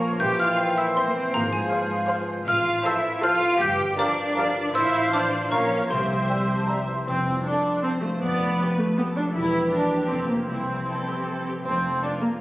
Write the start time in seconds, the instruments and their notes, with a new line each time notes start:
Already playing: harp A#2 F3 A#4 C#5 F5 A#5, bassoon F3, cello section A#3, viola section A#4 C#5, violin section A#4, clarinet A#4, oboe C#5, flute section F5, xylophone A#5
0.01 harp F4
0.11 harp C#4
0.20 double bass section A#1, harp A#2, bassoon E3, cello section G4, oboe C5, violin section G5, flute section G5, xylophone G6
0.29 harp A#3
0.39 harp E4, cello section F4, violin section F5, xylophone F6
0.48 harp C5
0.57 harp E4, viola section C5, french horn section C5 E5, violin section E5
0.68 harp E5
0.77 cello section E4, violin section E5, harp C6, xylophone E6
0.86 harp E5
0.96 cello section C4, harp C5, viola section C5, french horn section C5 E5, violin section C5 E5, xylophone C6
1.04 cello section A#3, harp E4
1.11 cello section C4
1.15 harp C4
1.26 harp A#3
1.34 double bass section G#1, harp G#2, bassoon F3, cello section A#3, clarinet G#4, violin section A#4, flute section F5, xylophone A#5
1.45 harp G#3
1.53 cello section G#3, harp F4, violin section G#4, xylophone G#5
1.65 harp C5
1.72 harp F4, viola section C5, french horn section C5 F5, violin section F5
1.83 harp F5
1.93 harp C6
2.02 harp F5
2.10 viola section C5, french horn section C5 F5, harp C5, violin section F5
2.21 harp F4
2.31 harp C4
2.40 harp G#3
2.47 double bass section A1, harp A2, cello section F4, violin section F5, xylophone F6
2.58 harp A3
2.67 harp F4
2.77 harp C5
2.84 bassoon F3, cello section E4, harp F4, viola section A4 C5, clarinet A4, french horn section C5 F5, oboe C5, violin section E5 A5, flute section A5, xylophone E6
3.04 harp C6
3.13 harp F5
3.23 bassoon F3, cello section F4, viola section A4 C5, clarinet A4, oboe C5, french horn section C5 F5, violin section F5 A5, flute section A5, xylophone F6
3.32 harp F4
3.42 harp C4
3.51 harp A3
3.60 double bass section G1, harp G2, cello section G4, violin section G5, xylophone G6
3.69 harp D3
3.78 harp F4
3.87 harp A#4
3.96 bassoon F3, cello section D4, clarinet G4, viola section A#4 D5, french horn section A#4 F5, harp D5, violin section D5 F5, oboe D5, flute section A#5, xylophone D6
4.06 harp F5
4.16 harp A#5
4.26 harp F5
4.35 bassoon F3, clarinet G4, viola section A#4 D5, french horn section A#4 F5, harp D5, oboe D5, violin section F5, flute section A#5
4.45 harp A#4
4.55 harp F4
4.64 harp D4
4.73 double bass section A1, harp A2, cello section E4, viola section C5, french horn section C5 F5, violin section E5 F5, xylophone E6
4.83 harp A3
4.93 harp F4
5.12 bassoon F3, cello section D4, harp F4, clarinet C5, oboe C5, violin section D5, flute section A5, xylophone D6
5.22 harp F5
5.33 harp C6
5.41 harp F5
5.51 double bass section A#1, harp A#2, bassoon F3, cello section C#4, clarinet A#4, viola section A#4 C#5, french horn section A#4 F5, violin section C#5 F5, oboe F5, flute section A#5, xylophone C#6
5.61 harp F3
5.70 harp F4
5.81 harp F5
5.90 double bass section C2, harp C3, cello section C4, viola section G4 C5, french horn section G4 E5, violin section C5 E5, xylophone C6
6.01 harp C4
6.11 harp E4
6.19 harp C5
6.29 bassoon G3, harp G4, clarinet C5, oboe E5, flute section G5
6.40 harp E5
6.50 flute section A5, harp C6
6.59 harp E5
6.67 bassoon G3, harp G4, clarinet C5, oboe E5, flute section A#5
6.78 harp C5
6.88 harp E4, flute section C6
6.99 harp G3
7.07 double bass section F1, cello section F2, harp F3, viola section C4, triangle
7.27 harp F4
7.44 viola section D4, harp A4, violin section A4
7.65 harp C6
7.82 viola section C4, violin section A4 C5, harp F5
8.01 viola section A3, harp A4
8.21 double bass section F1, cello section F2, harp F3, viola section B3, violin section D5
8.42 harp D4
8.59 harp G4, violin section G4 B4
8.79 viola section A3, harp D6
8.98 viola section B3, violin section G4 A4, harp D5
9.17 viola section D4, harp G4
9.35 double bass section E1, cello section E2, harp E3, viola section E4, violin section G4
9.54 harp A#3
9.71 viola section D4, violin section A#4, harp C5
9.91 harp G5
10.09 double bass section F1, cello section F2, harp F3, viola section C4, violin section A4
10.28 viola section A#3, harp F4 C5
10.47 double bass section C2, cello section C2, harp C3, viola section C4, violin section E4
10.69 harp G3
10.87 violin section A4, harp C5
11.07 violin section G4, harp E5
11.25 harp G4, violin section A4
11.45 violin section G4, harp C5
11.64 double bass section F1, harp F2, cello section F2, viola section C4, violin section A4, triangle
11.83 harp A3
12.02 viola section D4, violin section F4 A4, harp C5
12.21 viola section A#3, harp A4